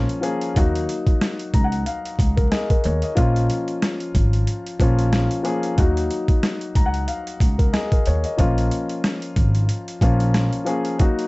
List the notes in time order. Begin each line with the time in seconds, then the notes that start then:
Already playing: F3 A#3 C#4 F4
0.09 closed hi-hat
0.21 F3 A#3 C#4 G#4, closed hi-hat
0.41 closed hi-hat
0.55 D#2 F#3 A#3 D#4 F#4, kick, closed hi-hat
0.75 closed hi-hat
0.89 closed hi-hat
1.07 kick, closed hi-hat
1.21 cross-stick, snare, closed hi-hat
1.40 closed hi-hat
1.54 C#2 A#5, kick, closed hi-hat
1.64 F#5
1.72 closed hi-hat
1.86 F5, closed hi-hat
2.05 closed hi-hat
2.19 C#2, kick, closed hi-hat
2.37 A#4, kick, closed hi-hat
2.51 G#4 D#5, cross-stick, snare, closed hi-hat
2.70 A#4, kick, closed hi-hat
2.84 D#2 C#5, closed hi-hat
3.02 D#5, closed hi-hat
3.15 A#1 F3 A#3 C#4 F4, kick, closed hi-hat
3.36 closed hi-hat
3.50 closed hi-hat
3.68 closed hi-hat
3.82 cross-stick, snare, closed hi-hat
4.00 closed hi-hat
4.15 G#1, kick, closed hi-hat
4.33 closed hi-hat
4.47 closed hi-hat
4.67 closed hi-hat
4.79 A#1 F3 A#3 C#4 F4, kick, closed hi-hat
4.99 closed hi-hat
5.13 cross-stick, snare, closed hi-hat
5.31 closed hi-hat
5.43 F3 A#3 C#4 G#4, closed hi-hat
5.63 closed hi-hat
5.77 D#2 F#3 A#3 D#4 F#4, kick, closed hi-hat
5.97 closed hi-hat
6.11 closed hi-hat
6.28 kick, closed hi-hat
6.43 cross-stick, snare, closed hi-hat
6.61 closed hi-hat
6.75 C#2 A#5, kick, closed hi-hat
6.86 F#5
6.94 closed hi-hat
7.08 F5, closed hi-hat
7.27 closed hi-hat
7.40 C#2, kick, closed hi-hat
7.58 A#4, kick, closed hi-hat
7.73 G#4 D#5, cross-stick, snare, closed hi-hat
7.92 A#4, kick, closed hi-hat
8.06 D#2 C#5, closed hi-hat
8.24 D#5, closed hi-hat
8.37 A#1 F3 A#3 C#4 F4, kick, closed hi-hat
8.58 closed hi-hat
8.71 closed hi-hat
8.89 closed hi-hat
9.04 cross-stick, snare, closed hi-hat
9.22 closed hi-hat
9.36 G#1, kick, closed hi-hat
9.55 closed hi-hat
9.69 closed hi-hat
9.88 closed hi-hat
10.01 A#1 F3 A#3 C#4 F4, kick, closed hi-hat
10.20 closed hi-hat
10.34 cross-stick, snare, closed hi-hat
10.53 closed hi-hat
10.65 F3 A#3 C#4 G#4, closed hi-hat
10.85 closed hi-hat
10.98 F#3 A#3 D#4 F#4, kick, closed hi-hat
11.19 closed hi-hat